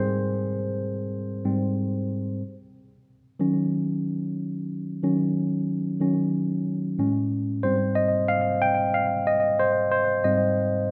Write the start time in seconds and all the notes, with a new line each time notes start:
Already playing: G#2 G3 C4 G#4 A#4 C5
1.45 G#2 G3 C4
3.39 D#3 F#3 C#4
5.03 D#3 F#3 C#4
6.01 D#3 F#3 C#4
6.99 A2 G#3 C#4
7.63 G#2 G3 C4 C5
7.95 D#5
8.28 F5
8.62 G5
8.94 F5
9.27 D#5
9.59 C5
9.91 C5
10.24 G#2 G3 C4 D#5